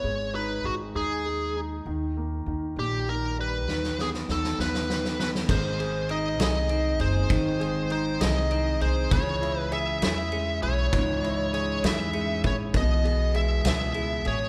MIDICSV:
0, 0, Header, 1, 6, 480
1, 0, Start_track
1, 0, Tempo, 604839
1, 28, Time_signature, 6, 3, 24, 8
1, 11497, End_track
2, 0, Start_track
2, 0, Title_t, "Lead electric guitar"
2, 0, Program_c, 0, 29
2, 0, Note_on_c, 0, 73, 80
2, 275, Note_off_c, 0, 73, 0
2, 278, Note_on_c, 0, 71, 75
2, 519, Note_on_c, 0, 66, 64
2, 521, Note_off_c, 0, 71, 0
2, 583, Note_off_c, 0, 66, 0
2, 762, Note_on_c, 0, 68, 62
2, 1266, Note_off_c, 0, 68, 0
2, 2216, Note_on_c, 0, 67, 72
2, 2452, Note_off_c, 0, 67, 0
2, 2453, Note_on_c, 0, 70, 74
2, 2668, Note_off_c, 0, 70, 0
2, 2704, Note_on_c, 0, 71, 85
2, 3184, Note_off_c, 0, 71, 0
2, 3184, Note_on_c, 0, 68, 67
2, 3245, Note_off_c, 0, 68, 0
2, 3424, Note_on_c, 0, 69, 65
2, 3635, Note_off_c, 0, 69, 0
2, 3655, Note_on_c, 0, 71, 68
2, 4120, Note_off_c, 0, 71, 0
2, 4129, Note_on_c, 0, 71, 62
2, 4192, Note_off_c, 0, 71, 0
2, 4371, Note_on_c, 0, 72, 82
2, 4846, Note_off_c, 0, 72, 0
2, 4850, Note_on_c, 0, 75, 87
2, 5074, Note_off_c, 0, 75, 0
2, 5083, Note_on_c, 0, 75, 92
2, 5561, Note_off_c, 0, 75, 0
2, 5564, Note_on_c, 0, 72, 89
2, 6275, Note_off_c, 0, 72, 0
2, 6285, Note_on_c, 0, 72, 90
2, 6517, Note_off_c, 0, 72, 0
2, 6520, Note_on_c, 0, 75, 99
2, 6996, Note_off_c, 0, 75, 0
2, 6999, Note_on_c, 0, 72, 84
2, 7240, Note_off_c, 0, 72, 0
2, 7243, Note_on_c, 0, 73, 96
2, 7624, Note_off_c, 0, 73, 0
2, 7624, Note_on_c, 0, 71, 96
2, 7719, Note_off_c, 0, 71, 0
2, 7722, Note_on_c, 0, 76, 94
2, 7942, Note_off_c, 0, 76, 0
2, 7964, Note_on_c, 0, 76, 105
2, 8408, Note_off_c, 0, 76, 0
2, 8437, Note_on_c, 0, 73, 96
2, 9153, Note_off_c, 0, 73, 0
2, 9162, Note_on_c, 0, 73, 85
2, 9381, Note_off_c, 0, 73, 0
2, 9408, Note_on_c, 0, 76, 97
2, 9848, Note_off_c, 0, 76, 0
2, 9893, Note_on_c, 0, 73, 87
2, 9955, Note_off_c, 0, 73, 0
2, 10131, Note_on_c, 0, 75, 92
2, 10599, Note_off_c, 0, 75, 0
2, 10602, Note_on_c, 0, 76, 90
2, 10840, Note_off_c, 0, 76, 0
2, 10850, Note_on_c, 0, 76, 102
2, 11327, Note_off_c, 0, 76, 0
2, 11330, Note_on_c, 0, 73, 91
2, 11497, Note_off_c, 0, 73, 0
2, 11497, End_track
3, 0, Start_track
3, 0, Title_t, "Clean electric guitar"
3, 0, Program_c, 1, 27
3, 4355, Note_on_c, 1, 51, 77
3, 4596, Note_on_c, 1, 56, 57
3, 4834, Note_on_c, 1, 60, 60
3, 5073, Note_on_c, 1, 68, 66
3, 5305, Note_off_c, 1, 60, 0
3, 5315, Note_on_c, 1, 60, 59
3, 5550, Note_off_c, 1, 68, 0
3, 5554, Note_on_c, 1, 68, 64
3, 5786, Note_off_c, 1, 51, 0
3, 5795, Note_on_c, 1, 51, 82
3, 6029, Note_off_c, 1, 56, 0
3, 6032, Note_on_c, 1, 56, 55
3, 6266, Note_off_c, 1, 60, 0
3, 6276, Note_on_c, 1, 60, 59
3, 6511, Note_off_c, 1, 68, 0
3, 6515, Note_on_c, 1, 68, 69
3, 6745, Note_off_c, 1, 60, 0
3, 6754, Note_on_c, 1, 60, 61
3, 6990, Note_off_c, 1, 68, 0
3, 6993, Note_on_c, 1, 68, 67
3, 7230, Note_off_c, 1, 51, 0
3, 7233, Note_on_c, 1, 52, 79
3, 7283, Note_off_c, 1, 60, 0
3, 7472, Note_off_c, 1, 56, 0
3, 7475, Note_on_c, 1, 56, 57
3, 7712, Note_on_c, 1, 61, 61
3, 7948, Note_off_c, 1, 68, 0
3, 7951, Note_on_c, 1, 68, 70
3, 8183, Note_off_c, 1, 61, 0
3, 8192, Note_on_c, 1, 61, 62
3, 8428, Note_off_c, 1, 68, 0
3, 8432, Note_on_c, 1, 68, 66
3, 8667, Note_off_c, 1, 52, 0
3, 8670, Note_on_c, 1, 52, 78
3, 8904, Note_off_c, 1, 56, 0
3, 8907, Note_on_c, 1, 56, 58
3, 9141, Note_off_c, 1, 61, 0
3, 9151, Note_on_c, 1, 61, 58
3, 9386, Note_off_c, 1, 68, 0
3, 9390, Note_on_c, 1, 68, 64
3, 9620, Note_off_c, 1, 61, 0
3, 9630, Note_on_c, 1, 61, 55
3, 9867, Note_off_c, 1, 68, 0
3, 9870, Note_on_c, 1, 68, 61
3, 10105, Note_off_c, 1, 52, 0
3, 10108, Note_on_c, 1, 52, 79
3, 10159, Note_off_c, 1, 61, 0
3, 10346, Note_off_c, 1, 56, 0
3, 10349, Note_on_c, 1, 59, 58
3, 10588, Note_on_c, 1, 64, 63
3, 10826, Note_off_c, 1, 68, 0
3, 10829, Note_on_c, 1, 68, 63
3, 11065, Note_off_c, 1, 64, 0
3, 11068, Note_on_c, 1, 64, 60
3, 11302, Note_off_c, 1, 68, 0
3, 11311, Note_on_c, 1, 68, 65
3, 11497, Note_off_c, 1, 52, 0
3, 11497, Note_off_c, 1, 59, 0
3, 11497, Note_off_c, 1, 64, 0
3, 11497, Note_off_c, 1, 68, 0
3, 11497, End_track
4, 0, Start_track
4, 0, Title_t, "Grand piano"
4, 0, Program_c, 2, 0
4, 0, Control_c, 2, 64, 127
4, 33, Note_on_c, 2, 56, 51
4, 39, Control_c, 2, 64, 0
4, 194, Control_c, 2, 64, 127
4, 276, Note_on_c, 2, 63, 41
4, 505, Note_off_c, 2, 56, 0
4, 517, Note_on_c, 2, 56, 45
4, 744, Note_off_c, 2, 63, 0
4, 756, Note_on_c, 2, 63, 48
4, 984, Note_off_c, 2, 56, 0
4, 996, Note_on_c, 2, 56, 43
4, 1227, Note_off_c, 2, 63, 0
4, 1239, Note_on_c, 2, 63, 43
4, 1460, Note_off_c, 2, 56, 0
4, 1469, Note_off_c, 2, 63, 0
4, 1479, Note_on_c, 2, 51, 54
4, 1482, Control_c, 2, 64, 0
4, 1644, Control_c, 2, 64, 127
4, 1721, Note_on_c, 2, 58, 45
4, 1952, Note_off_c, 2, 51, 0
4, 1964, Note_on_c, 2, 51, 49
4, 2206, Note_on_c, 2, 46, 45
4, 2436, Note_off_c, 2, 51, 0
4, 2448, Note_on_c, 2, 51, 41
4, 2650, Note_off_c, 2, 58, 0
4, 2685, Note_on_c, 2, 55, 44
4, 2900, Note_off_c, 2, 46, 0
4, 2908, Note_off_c, 2, 51, 0
4, 2914, Note_off_c, 2, 55, 0
4, 2924, Control_c, 2, 64, 0
4, 2924, Note_on_c, 2, 51, 53
4, 3058, Control_c, 2, 64, 127
4, 3164, Note_on_c, 2, 59, 42
4, 3391, Note_off_c, 2, 51, 0
4, 3403, Note_on_c, 2, 51, 46
4, 3627, Note_off_c, 2, 59, 0
4, 3639, Note_on_c, 2, 59, 45
4, 3873, Note_off_c, 2, 51, 0
4, 3885, Note_on_c, 2, 51, 41
4, 4112, Note_off_c, 2, 59, 0
4, 4124, Note_on_c, 2, 59, 41
4, 4347, Note_off_c, 2, 51, 0
4, 4353, Note_off_c, 2, 59, 0
4, 4359, Note_on_c, 2, 56, 63
4, 4366, Control_c, 2, 64, 0
4, 4527, Control_c, 2, 64, 127
4, 4603, Note_on_c, 2, 68, 50
4, 4844, Note_on_c, 2, 63, 55
4, 5071, Note_off_c, 2, 68, 0
4, 5083, Note_on_c, 2, 68, 55
4, 5308, Note_off_c, 2, 63, 0
4, 5320, Note_on_c, 2, 63, 48
4, 5548, Note_off_c, 2, 68, 0
4, 5560, Note_on_c, 2, 68, 55
4, 5767, Note_off_c, 2, 56, 0
4, 5801, Note_on_c, 2, 51, 67
4, 6023, Note_off_c, 2, 68, 0
4, 6034, Note_on_c, 2, 68, 55
4, 6250, Note_off_c, 2, 63, 0
4, 6277, Note_on_c, 2, 63, 57
4, 6501, Note_off_c, 2, 68, 0
4, 6513, Note_on_c, 2, 68, 58
4, 6743, Note_off_c, 2, 63, 0
4, 6754, Note_on_c, 2, 63, 53
4, 6982, Note_off_c, 2, 68, 0
4, 6994, Note_on_c, 2, 68, 56
4, 7207, Note_off_c, 2, 51, 0
4, 7221, Note_off_c, 2, 63, 0
4, 7228, Note_off_c, 2, 68, 0
4, 7233, Note_on_c, 2, 49, 66
4, 7248, Control_c, 2, 64, 0
4, 7409, Control_c, 2, 64, 127
4, 7472, Note_on_c, 2, 64, 57
4, 7715, Note_on_c, 2, 68, 54
4, 7942, Note_off_c, 2, 64, 0
4, 7954, Note_on_c, 2, 64, 59
4, 8194, Note_on_c, 2, 56, 52
4, 8422, Note_off_c, 2, 64, 0
4, 8434, Note_on_c, 2, 64, 54
4, 8642, Note_off_c, 2, 49, 0
4, 8646, Note_off_c, 2, 68, 0
4, 8671, Note_on_c, 2, 44, 63
4, 8903, Note_off_c, 2, 64, 0
4, 8915, Note_on_c, 2, 64, 52
4, 9125, Note_off_c, 2, 56, 0
4, 9153, Note_on_c, 2, 68, 53
4, 9382, Note_off_c, 2, 64, 0
4, 9394, Note_on_c, 2, 64, 56
4, 9637, Note_on_c, 2, 56, 48
4, 9862, Note_off_c, 2, 64, 0
4, 9874, Note_on_c, 2, 64, 49
4, 10079, Note_off_c, 2, 44, 0
4, 10084, Note_off_c, 2, 68, 0
4, 10100, Note_off_c, 2, 56, 0
4, 10106, Note_off_c, 2, 64, 0
4, 10116, Note_on_c, 2, 47, 63
4, 10122, Control_c, 2, 64, 0
4, 10265, Control_c, 2, 64, 127
4, 10354, Note_on_c, 2, 68, 54
4, 10591, Note_on_c, 2, 56, 55
4, 10818, Note_off_c, 2, 68, 0
4, 10830, Note_on_c, 2, 68, 53
4, 11061, Note_off_c, 2, 56, 0
4, 11073, Note_on_c, 2, 56, 47
4, 11300, Note_off_c, 2, 68, 0
4, 11312, Note_on_c, 2, 68, 55
4, 11497, Note_off_c, 2, 47, 0
4, 11497, Note_off_c, 2, 56, 0
4, 11497, Note_off_c, 2, 68, 0
4, 11497, End_track
5, 0, Start_track
5, 0, Title_t, "Upright bass"
5, 0, Program_c, 3, 32
5, 30, Note_on_c, 3, 32, 81
5, 481, Note_off_c, 3, 32, 0
5, 510, Note_on_c, 3, 32, 72
5, 751, Note_on_c, 3, 39, 75
5, 763, Note_off_c, 3, 32, 0
5, 1441, Note_off_c, 3, 39, 0
5, 1474, Note_on_c, 3, 39, 78
5, 1925, Note_off_c, 3, 39, 0
5, 1955, Note_on_c, 3, 39, 72
5, 2180, Note_off_c, 3, 39, 0
5, 2193, Note_on_c, 3, 34, 76
5, 2918, Note_off_c, 3, 34, 0
5, 2918, Note_on_c, 3, 39, 76
5, 3369, Note_off_c, 3, 39, 0
5, 3400, Note_on_c, 3, 39, 71
5, 3624, Note_off_c, 3, 39, 0
5, 3640, Note_on_c, 3, 39, 71
5, 4327, Note_off_c, 3, 39, 0
5, 4356, Note_on_c, 3, 32, 93
5, 5076, Note_off_c, 3, 32, 0
5, 5076, Note_on_c, 3, 36, 89
5, 5528, Note_off_c, 3, 36, 0
5, 5554, Note_on_c, 3, 30, 84
5, 5781, Note_off_c, 3, 30, 0
5, 5793, Note_on_c, 3, 32, 91
5, 6483, Note_off_c, 3, 32, 0
5, 6516, Note_on_c, 3, 36, 96
5, 6967, Note_off_c, 3, 36, 0
5, 6995, Note_on_c, 3, 36, 85
5, 7222, Note_off_c, 3, 36, 0
5, 7234, Note_on_c, 3, 37, 94
5, 7923, Note_off_c, 3, 37, 0
5, 7950, Note_on_c, 3, 40, 91
5, 8403, Note_off_c, 3, 40, 0
5, 8435, Note_on_c, 3, 35, 88
5, 8661, Note_off_c, 3, 35, 0
5, 8675, Note_on_c, 3, 37, 101
5, 9362, Note_off_c, 3, 37, 0
5, 9392, Note_on_c, 3, 40, 88
5, 9843, Note_off_c, 3, 40, 0
5, 9874, Note_on_c, 3, 33, 77
5, 10099, Note_off_c, 3, 33, 0
5, 10113, Note_on_c, 3, 35, 93
5, 10800, Note_off_c, 3, 35, 0
5, 10831, Note_on_c, 3, 37, 89
5, 11282, Note_off_c, 3, 37, 0
5, 11314, Note_on_c, 3, 33, 79
5, 11497, Note_off_c, 3, 33, 0
5, 11497, End_track
6, 0, Start_track
6, 0, Title_t, "Drums"
6, 2924, Note_on_c, 9, 38, 46
6, 3003, Note_off_c, 9, 38, 0
6, 3046, Note_on_c, 9, 38, 42
6, 3125, Note_off_c, 9, 38, 0
6, 3165, Note_on_c, 9, 38, 54
6, 3244, Note_off_c, 9, 38, 0
6, 3285, Note_on_c, 9, 38, 45
6, 3364, Note_off_c, 9, 38, 0
6, 3404, Note_on_c, 9, 38, 54
6, 3483, Note_off_c, 9, 38, 0
6, 3525, Note_on_c, 9, 38, 53
6, 3604, Note_off_c, 9, 38, 0
6, 3647, Note_on_c, 9, 38, 66
6, 3726, Note_off_c, 9, 38, 0
6, 3765, Note_on_c, 9, 38, 61
6, 3845, Note_off_c, 9, 38, 0
6, 3888, Note_on_c, 9, 38, 73
6, 3967, Note_off_c, 9, 38, 0
6, 4005, Note_on_c, 9, 38, 59
6, 4085, Note_off_c, 9, 38, 0
6, 4125, Note_on_c, 9, 38, 77
6, 4204, Note_off_c, 9, 38, 0
6, 4247, Note_on_c, 9, 38, 69
6, 4326, Note_off_c, 9, 38, 0
6, 4357, Note_on_c, 9, 36, 111
6, 4357, Note_on_c, 9, 49, 86
6, 4436, Note_off_c, 9, 36, 0
6, 4437, Note_off_c, 9, 49, 0
6, 4602, Note_on_c, 9, 51, 39
6, 4682, Note_off_c, 9, 51, 0
6, 4834, Note_on_c, 9, 51, 45
6, 4914, Note_off_c, 9, 51, 0
6, 5076, Note_on_c, 9, 51, 81
6, 5083, Note_on_c, 9, 38, 109
6, 5155, Note_off_c, 9, 51, 0
6, 5162, Note_off_c, 9, 38, 0
6, 5310, Note_on_c, 9, 51, 43
6, 5390, Note_off_c, 9, 51, 0
6, 5552, Note_on_c, 9, 51, 43
6, 5632, Note_off_c, 9, 51, 0
6, 5793, Note_on_c, 9, 51, 67
6, 5794, Note_on_c, 9, 36, 102
6, 5872, Note_off_c, 9, 51, 0
6, 5873, Note_off_c, 9, 36, 0
6, 6040, Note_on_c, 9, 51, 42
6, 6120, Note_off_c, 9, 51, 0
6, 6270, Note_on_c, 9, 51, 45
6, 6350, Note_off_c, 9, 51, 0
6, 6515, Note_on_c, 9, 51, 90
6, 6521, Note_on_c, 9, 38, 107
6, 6594, Note_off_c, 9, 51, 0
6, 6601, Note_off_c, 9, 38, 0
6, 6751, Note_on_c, 9, 51, 42
6, 6831, Note_off_c, 9, 51, 0
6, 6994, Note_on_c, 9, 51, 41
6, 7073, Note_off_c, 9, 51, 0
6, 7233, Note_on_c, 9, 36, 110
6, 7233, Note_on_c, 9, 51, 68
6, 7312, Note_off_c, 9, 36, 0
6, 7312, Note_off_c, 9, 51, 0
6, 7482, Note_on_c, 9, 51, 42
6, 7561, Note_off_c, 9, 51, 0
6, 7712, Note_on_c, 9, 51, 46
6, 7792, Note_off_c, 9, 51, 0
6, 7952, Note_on_c, 9, 51, 86
6, 7959, Note_on_c, 9, 38, 109
6, 8031, Note_off_c, 9, 51, 0
6, 8038, Note_off_c, 9, 38, 0
6, 8188, Note_on_c, 9, 51, 42
6, 8267, Note_off_c, 9, 51, 0
6, 8433, Note_on_c, 9, 51, 43
6, 8512, Note_off_c, 9, 51, 0
6, 8673, Note_on_c, 9, 36, 107
6, 8675, Note_on_c, 9, 51, 65
6, 8753, Note_off_c, 9, 36, 0
6, 8754, Note_off_c, 9, 51, 0
6, 8923, Note_on_c, 9, 51, 40
6, 9002, Note_off_c, 9, 51, 0
6, 9156, Note_on_c, 9, 51, 46
6, 9236, Note_off_c, 9, 51, 0
6, 9395, Note_on_c, 9, 51, 85
6, 9402, Note_on_c, 9, 38, 108
6, 9474, Note_off_c, 9, 51, 0
6, 9481, Note_off_c, 9, 38, 0
6, 9628, Note_on_c, 9, 51, 40
6, 9708, Note_off_c, 9, 51, 0
6, 9870, Note_on_c, 9, 51, 41
6, 9874, Note_on_c, 9, 36, 92
6, 9949, Note_off_c, 9, 51, 0
6, 9954, Note_off_c, 9, 36, 0
6, 10112, Note_on_c, 9, 36, 109
6, 10113, Note_on_c, 9, 51, 69
6, 10191, Note_off_c, 9, 36, 0
6, 10192, Note_off_c, 9, 51, 0
6, 10359, Note_on_c, 9, 51, 41
6, 10438, Note_off_c, 9, 51, 0
6, 10591, Note_on_c, 9, 51, 45
6, 10670, Note_off_c, 9, 51, 0
6, 10831, Note_on_c, 9, 51, 91
6, 10837, Note_on_c, 9, 38, 109
6, 10910, Note_off_c, 9, 51, 0
6, 10916, Note_off_c, 9, 38, 0
6, 11065, Note_on_c, 9, 51, 42
6, 11144, Note_off_c, 9, 51, 0
6, 11308, Note_on_c, 9, 51, 41
6, 11387, Note_off_c, 9, 51, 0
6, 11497, End_track
0, 0, End_of_file